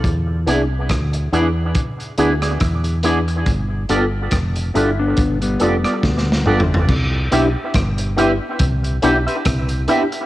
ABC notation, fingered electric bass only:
X:1
M:4/4
L:1/16
Q:"Swing 16ths" 1/4=70
K:C
V:1 name="Fingered electric bass" clef=bass
E,,2 C,,2 D,,2 E,,2 z2 D,,2 E,,4 | G,,,2 G,,,2 F,,,2 G,,,2 G,,,2 F,,, z D,,2 G,,,2 | C,,2 B,,, z G,,,3 z C,,2 B,,, z C,,2 z2 |]